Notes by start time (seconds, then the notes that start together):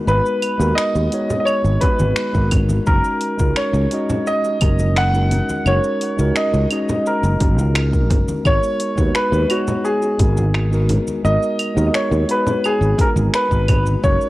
0.06 G#1 G#3 B3 D#4 F#4 B4, shaker
0.26 shaker
0.42 open hi-hat, claves
0.58 D#2 G#3 B3 D#4 F#4 A#4, shaker
0.75 D#5, finger snap, shaker
0.95 D#2, shaker
1.10 G#3 B3 D#4 F#4, open hi-hat
1.14 C#5
1.30 high bongo, low conga, shaker
1.40 D#5
1.45 C#5, claves, shaker
1.64 G#1, shaker
1.80 G#3 B3 D#4 F#4 B4, kick, open hi-hat, high bongo
1.99 G#1, high conga, shaker
2.16 finger snap, shaker
2.32 G#1 G#3 B3 D#4 F#4 A#4, kick, shaker
2.51 kick, open hi-hat, low conga, claves
2.69 high conga, shaker
2.85 F#1 G#3 C#4 D#4 F#4 A#4, kick, shaker
3.04 shaker
3.21 open hi-hat
3.37 C#2 G#3 C#4 D#4 F#4, kick, high bongo, shaker
3.41 A#4
3.56 C#5, finger snap, claves, shaker
3.73 C#2, shaker
3.90 G#3 C#4 D#4 F#4 D#5, open hi-hat
4.09 low conga, shaker
4.27 D#5, shaker
4.44 high bongo, shaker
4.60 F#1 G#3 C#4 D#4 F#4 A#4, kick, open hi-hat, high bongo, claves
4.79 high conga, shaker
4.96 F#5, finger snap, shaker
5.12 G#3 C#4 D#4 F#4 A#4, shaker
5.31 open hi-hat, low conga
5.49 high conga, shaker
5.64 F#1 G#3 C#4 D#4 F#4 A#4 C#5, claves, shaker
5.84 shaker
6.01 open hi-hat
6.17 C#2 G#3 C#4 D#4 F#4, high bongo, shaker
6.21 A#4
6.36 D#5, finger snap, shaker
6.54 C#2, shaker
6.69 G#3 C#4 D#4 F#4 D#5, open hi-hat, claves
6.89 high bongo, low conga, shaker
7.06 A#4, shaker
7.23 F#1, shaker
7.39 F#1 G#3 C#4 D#4 F#4 A#4, kick, open hi-hat, high bongo
7.58 C#2, high conga, shaker
7.75 finger snap, claves, shaker
7.91 G#3 C#4 D#4 F#4 A#4, kick, shaker
8.10 F#1, kick, open hi-hat, low conga
8.28 high conga, shaker
8.43 G#1 G#3 B3 D#4 F#4 A#4 C#5, kick, claves, shaker
8.63 shaker
8.80 open hi-hat
8.96 D#2 G#3 B3 D#4 F#4 B4, kick, high bongo, shaker
9.15 B4, finger snap, shaker
9.32 D#2, shaker
9.48 G#3 B3 D#4 F#4, open hi-hat, claves
9.52 C#5
9.68 low conga, shaker
9.85 G#4, shaker
10.02 high bongo, shaker
10.18 G#1 G#3 B3 D#4 F#4 A#4, kick, open hi-hat, high bongo
10.37 high conga, shaker
10.54 finger snap, claves, shaker
10.70 G#3 B3 D#4 F#4 A#4, shaker
10.89 open hi-hat, low conga
11.07 high conga, shaker
11.23 G#1 G#3 B3 D#4 F#4 A#4 D#5, shaker
11.43 shaker
11.59 open hi-hat, claves
11.74 D#2 G#3 B3 D#4 F#4 A#4, shaker
11.87 D#5
11.94 C#5, finger snap, shaker
12.11 D#2, shaker
12.27 G#3 B3 D#4 F#4 C#5, open hi-hat
12.31 B4
12.47 high bongo, low conga, shaker
12.64 G#4, claves, shaker
12.81 G#1, shaker
12.98 B3 D#4 F#4 A#4, kick, open hi-hat, high bongo
13.16 G#1, high conga, shaker
13.34 B4, finger snap, shaker
13.49 G#1 G#3 B3 D#4 F#4, kick, shaker
13.53 B4
13.68 kick, open hi-hat, low conga, claves
13.85 high conga, shaker
14.01 F#1 G#3 C#4 D#4 F#4 A#4 C#5, kick, shaker
14.21 shaker